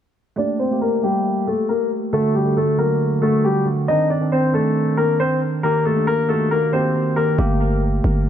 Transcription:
0.36 tine electric piano A3 A#3 G4, grand piano D4 D5
0.59 grand piano C4 C5
0.71 tine electric piano A3 A#3 G4
0.81 grand piano A#3 A#4
1.02 grand piano G3 G4, tine electric piano A3 A#3 G4
1.47 grand piano A3 A4
1.69 grand piano A#3 A#4
2.13 tine electric piano D3 A3 F#4, grand piano A3 A4
2.35 grand piano G3 G4
2.45 tine electric piano D3 A3 A4
2.57 grand piano A3 A4
2.77 tine electric piano D3 F#3 F#4, grand piano A#3 A#4
3.22 tine electric piano D3 A3 F#4, grand piano A3 A4
3.45 grand piano G3 G4
3.65 tine electric piano D3 A3 F#4
3.88 tine electric piano D#3 C4 D4, grand piano D#4 D#5
4.10 grand piano D4 D5
4.21 tine electric piano D#3 C4 D4
4.32 grand piano C4 C5
4.52 tine electric piano D#3 C4 D4, grand piano A3 A4
4.97 grand piano A#3 A#4
5.20 grand piano C4 C5
5.63 tine electric piano D#3 A#3 G4, grand piano A#3 A#4
5.85 grand piano A3 A4
5.95 tine electric piano D#3 A#3 D4
6.07 grand piano A#3 A#4
6.28 tine electric piano D#3 A#3 F#4, grand piano A3 A4
6.51 grand piano A#3 A#4
6.72 tine electric piano D#3 A#3 G4, grand piano C4 C5
7.16 tine electric piano D#3 A#3 G4, grand piano A#3 A#4
7.38 808-style bass G1, tine electric piano A3 A#3 G4
8.04 808-style bass G1

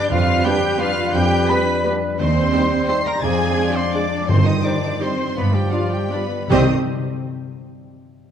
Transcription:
Already playing: harp G2 D3 D4 G4 B4 D5, cello section D4
0.01 harp G3, violin section G6
0.09 harp F2, double bass section F2, bassoon G3, cello section F4, oboe B4, violin section F5 F6, flute F5
0.18 harp F3
0.27 harp G3
0.36 harp D4
0.44 french horn section G3 D4, viola section B3 G4, cello section G4, harp B4, trumpet B4, violin section G5 G6, flute G5
0.53 harp G4
0.62 harp D5
0.71 harp B5
0.79 french horn section G3 D4, viola section B3 G4, cello section F4, harp G4, trumpet B4, violin section F5 F6, flute F5
0.89 harp B4
0.98 harp D4
1.05 harp G3
1.13 harp F2, double bass section F2, cello section G4, violin section G5 G6, flute G5
1.22 harp F3
1.30 harp G3
1.39 harp D4
1.47 french horn section G3 D4, viola section B3 G4, cello section B4, trumpet B4, violin section B5 B6, flute B5
1.58 harp G4
1.66 harp D5
1.84 french horn section G3 D4, viola section B3 G4, harp G4, trumpet B4
1.94 harp B4
2.01 harp D4
2.10 harp G3
2.18 double bass section D#2, harp D#3, bassoon G3, cello section C4, violin section C5 C6, flute C5, oboe C5
2.27 harp G3
2.35 harp D#4
2.44 harp C5
2.53 french horn section G3 D#4, viola section C4 G4, harp G4, trumpet C5
2.63 harp D#5
2.81 harp G5
2.87 french horn section G3 D#4, viola section C4 G4, cello section C5, trumpet C5, harp D#5, violin section C6 C7, flute C6
2.98 harp G4
3.05 cello section A#4, harp C5, violin section A#5 A#6, flute A#5
3.15 harp D#4
3.21 harp F2, double bass section F2, bassoon F3, cello section G#4, oboe D5, flute G#5, violin section G#5 G#6
3.31 harp F3
3.40 harp G#3
3.50 harp D4
3.56 french horn section G#3 D4, viola section D4 G#4, trumpet D5, harp D5
3.68 harp G#4
3.75 cello section C4, violin section C5 C6, flute C5, harp D5
3.86 harp D6
3.93 french horn section G#3 D4, cello section D4, viola section D4 G#4, harp G#4, flute D5, trumpet D5, violin section D5 D6
4.04 harp D5
4.12 harp D4
4.21 harp G#3
4.28 harp G2, double bass section G2, timpani G2, bassoon D#3, cello section C4, flute C5, violin section C5 C6, oboe C5
4.37 harp D#3
4.45 harp G3, cello section D#4, flute D#5, violin section D#5 D#6
4.55 harp D#4
4.63 french horn section G3 D#4, cello section D4, viola section D#4 G4, harp C5, trumpet C5, flute D5, violin section D5 D6
4.74 harp G4
4.83 harp D#5
4.93 harp C6
5.00 french horn section G3 D#4, cello section C4, viola section D#4 G4, harp G4, trumpet C5, violin section C5 C6, flute C5
5.11 harp C5
5.19 harp D#4
5.28 harp G3
5.36 harp G2, double bass section G2, bassoon F3, cello section B3, flute B4, violin section B4 B5, oboe D5
5.45 harp D3
5.53 cello section G3, harp G3, flute G4, violin section G4 G5
5.63 harp F4
5.71 cello section F3, french horn section G3 F4, viola section D4 F4, violin section F4 F5, flute F4, trumpet D5, harp D5
5.83 harp G4
5.91 cello section G3, violin section G4 G5, flute G4, harp F5
6.02 harp D6
6.11 french horn section G3 F4, cello section B3, viola section D4 F4, harp G4, violin section B4 B5, flute B4, trumpet D5
6.22 harp D5
6.32 harp F4
6.41 harp G3
6.47 harp C3 G3 C4, timpani C3, cello section D#3, french horn section G3 G4, viola section C4 G4, trumpet C5, violin section D#5, flute D#5
6.51 double bass section C2, bassoon G3, harp G4 C5 G5, oboe C5, violin section D#6

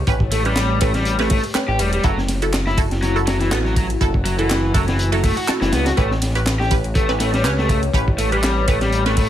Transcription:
Already playing: analog synth pad A3 G4 B4 C#5
0.07 analog synth bass A1, synth stab C#4 G4 B4, kick, closed hi-hat
0.20 kick
0.32 overdriven electric guitar A3, closed hi-hat, ride
0.45 overdriven electric guitar G3, synth stab C#4 G4 B4, closed hi-hat
0.56 snare, clap, closed hi-hat
0.81 overdriven electric guitar A3, synth stab C#4 G4 B4, kick, closed hi-hat, ride
0.94 overdriven electric guitar G3, snare, closed hi-hat
1.05 closed hi-hat
1.19 overdriven electric guitar A3, synth stab C#4 G4 B4, snare, ride
1.30 overdriven electric guitar A3, kick, closed hi-hat, open hi-hat, ride
1.44 closed hi-hat
1.55 synth stab C#4 G4 B4, snare, clap, closed hi-hat
1.68 analog synth bass A1, overdriven electric guitar G4
1.79 analog synth bass E1, overdriven electric guitar G3, closed hi-hat, ride
1.93 overdriven electric guitar G3, closed hi-hat
2.04 analog synth bass F#1, overdriven electric guitar F#3, synth stab E4 F#4 A4, analog synth pad E4 F#4, kick, closed hi-hat
2.18 snare
2.29 snare, closed hi-hat, ride
2.42 synth stab E4 F#4 A4, closed hi-hat
2.53 snare, clap, closed hi-hat
2.67 overdriven electric guitar E4, snare
2.78 synth stab E4 F#4 A4, kick, closed hi-hat, ride
2.91 snare, closed hi-hat
3.03 overdriven electric guitar F#3, snare, closed hi-hat
3.16 synth stab E4 F#4 A4, closed hi-hat
3.27 overdriven electric guitar F#3, snare, closed hi-hat, ride
3.40 overdriven electric guitar E3, snare, closed hi-hat
3.51 analog synth bass A1, overdriven electric guitar B3, synth stab E4 F#4 A4, snare, clap, closed hi-hat
3.65 overdriven electric guitar F#3, snare
3.76 overdriven electric guitar F#3, kick, closed hi-hat, ride
3.90 closed hi-hat
4.01 analog synth bass F#1, synth stab E4 F#4 A4, kick, closed hi-hat
4.14 kick
4.25 overdriven electric guitar F#3, closed hi-hat, ride
4.39 overdriven electric guitar E3, synth stab E4 F#4 A4, closed hi-hat
4.50 snare, clap, closed hi-hat
4.74 overdriven electric guitar F#3, synth stab E4 F#4 A4, kick, closed hi-hat, ride
4.88 overdriven electric guitar E3, snare, closed hi-hat
4.99 closed hi-hat
5.12 overdriven electric guitar F#3, synth stab E4 F#4 A4, ride
5.23 overdriven electric guitar A3, kick, closed hi-hat, open hi-hat, ride
5.37 overdriven electric guitar F#4, closed hi-hat
5.48 synth stab E4 F#4 A4, snare, clap, closed hi-hat
5.61 analog synth bass F#1, overdriven electric guitar E3, snare, closed hi-hat
5.72 analog synth bass C#2, overdriven electric guitar B3, snare, closed hi-hat, ride
5.86 overdriven electric guitar F#4, snare, closed hi-hat
5.97 analog synth bass A1, analog synth pad A3 G4 B4 C#5, overdriven electric guitar A3, synth stab C#4 G4 B4, kick, closed hi-hat
6.11 snare
6.22 snare, closed hi-hat, ride
6.35 synth stab C#4 G4 B4, closed hi-hat
6.46 snare, clap, closed hi-hat
6.60 overdriven electric guitar G4, snare
6.71 synth stab C#4 G4 B4, kick, closed hi-hat, ride
6.84 closed hi-hat
6.95 overdriven electric guitar A3, kick, closed hi-hat
7.09 synth stab C#4 G4 B4, snare
7.20 overdriven electric guitar A3, snare, closed hi-hat, ride
7.34 overdriven electric guitar G3, snare, closed hi-hat
7.44 analog synth bass C#2, overdriven electric guitar C#4, synth stab C#4 G4 B4, snare, clap, closed hi-hat
7.58 overdriven electric guitar A3, snare
7.69 overdriven electric guitar A3, kick, closed hi-hat, ride
7.83 closed hi-hat
7.93 analog synth bass A1, synth stab C#4 G4 B4, kick, closed hi-hat
8.08 kick
8.18 overdriven electric guitar A3, closed hi-hat, ride
8.32 overdriven electric guitar G3, synth stab C#4 G4 B4, closed hi-hat
8.43 snare, clap, closed hi-hat
8.68 overdriven electric guitar A3, synth stab C#4 G4 B4, kick, closed hi-hat, ride
8.81 overdriven electric guitar G3, snare, closed hi-hat
8.93 closed hi-hat
9.06 overdriven electric guitar A3, synth stab C#4 G4 B4, snare, ride
9.17 overdriven electric guitar A3, kick, closed hi-hat, open hi-hat, ride

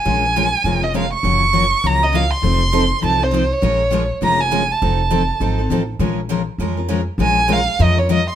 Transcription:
Already playing: violin G#5
0.06 upright bass A#1, steel-string acoustic guitar F3 G#3 C#4 F4 A#4
0.36 steel-string acoustic guitar F3 G#3 C#4 F4 A#4
0.64 upright bass F1, steel-string acoustic guitar F3 G#3 C#4 F4 A#4
0.82 steel-string acoustic guitar C#4 F4 A#4, violin D#5
0.94 steel-string acoustic guitar F3 G#3 C#4 F4 A#4, violin F5
1.14 violin C#6
1.23 upright bass F#1, steel-string acoustic guitar C#3 F3 F#3 A#3 C#4 F4 F#4 A#4
1.53 steel-string acoustic guitar C#3 F3 F#3 A#3 C#4 F4 F#4 A#4
1.84 upright bass C#2, steel-string acoustic guitar C#3 F3 F#3 A#3 C#4 F4 F#4 A#4, violin A#5
2.01 steel-string acoustic guitar A#3 C#4 F#4, violin D#5
2.12 steel-string acoustic guitar C#3 F3 F#3 A#3 C#4 F4 F#4 A#4, violin F5
2.31 violin C6
2.42 upright bass F1, steel-string acoustic guitar F3 C4 D#4 A4
2.72 steel-string acoustic guitar F3 C4 D#4 A4
3.01 upright bass C2, steel-string acoustic guitar F3 C4 D#4 A4
3.05 violin A5
3.19 steel-string acoustic guitar C4 D#4 A4
3.23 violin C5
3.31 steel-string acoustic guitar F3 C4 D#4 A4
3.52 violin C#5
3.62 upright bass A#1, steel-string acoustic guitar F3 G#3 C#4 F4 A#4
3.90 steel-string acoustic guitar F3 G#3 C#4 F4 A#4
4.21 upright bass F1, steel-string acoustic guitar F3 G#3 C#4 F4 A#4, violin A#5
4.38 steel-string acoustic guitar C#4 F4 A#4, violin G#5
4.52 steel-string acoustic guitar F3 G#3 C#4 F4 A#4
4.72 violin A5
4.81 upright bass F1, steel-string acoustic guitar F3 C4 D#4 A4
5.11 steel-string acoustic guitar F3 C4 D#4 A4
5.40 upright bass G#1, steel-string acoustic guitar F3 C4 D#4 A4
5.58 steel-string acoustic guitar C4 D#4 A4
5.70 upright bass A1, steel-string acoustic guitar F3 C4 D#4 A4
5.99 upright bass A#1, steel-string acoustic guitar F3 G#3 C#4 F4 A#4
6.30 steel-string acoustic guitar F3 G#3 C#4 F4 A#4
6.58 upright bass F2, steel-string acoustic guitar F3 G#3 C#4 F4 A#4
6.77 steel-string acoustic guitar C#4 F4 A#4
6.90 steel-string acoustic guitar F3 G#3 C#4 F4 A#4
7.18 upright bass A#1, steel-string acoustic guitar F3 G#3 C#4 F4 A#4
7.22 violin G#5
7.49 steel-string acoustic guitar F3 G#3 C#4 F4 A#4, violin F5
7.79 upright bass F2, steel-string acoustic guitar F3 G#3 C#4 F4 A#4, violin D#5
7.95 steel-string acoustic guitar C#4 F4 A#4, violin C#5
8.09 steel-string acoustic guitar F3 G#3 C#4 F4 A#4, violin D#5
8.30 violin C6

